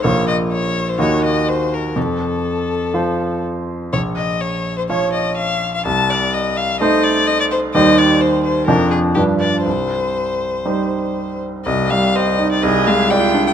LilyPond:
<<
  \new Staff \with { instrumentName = "Violin" } { \time 4/4 \key bes \minor \tempo 4 = 124 des''8 ees''8 des''8. c''16 des''8 ees''8 c''8 bes'8 | a'2. r4 | des''8 ees''8 des''8. c''16 des''8 ees''8 f''8. f''16 | a''8 d''8 ees''8 f''8 ees''8 d''8 ees''16 d''16 c''8 |
\key c \minor ees''8 d''8 c''8 c''8 bes'8 aes'8 g'8 d''8 | c''2.~ c''8 r8 | ees''8 f''8 ees''8. d''16 ees''8 f''8 g''8. g''16 | }
  \new Staff \with { instrumentName = "Cello" } { \time 4/4 \key bes \minor r1 | r1 | r1 | r1 |
\key c \minor r1 | r1 | r2 aes'4 f'4 | }
  \new Staff \with { instrumentName = "Grand piano" } { \time 4/4 \key bes \minor <bes,, bes f' f''>2 <ees, bes ges' ees''>2 | f,2 <f f' c''>2 | bes,,2 <f f' des''>2 | c,2 <a ees' c''>2 |
\key c \minor <ees, g ees' c''>2 <f, f d' d''>4 <g, f d' b'>4 | c,2 <g ees' c''>2 | c,8 g8 c''8 ees'8 c,8 aes8 d''8 d'8 | }
>>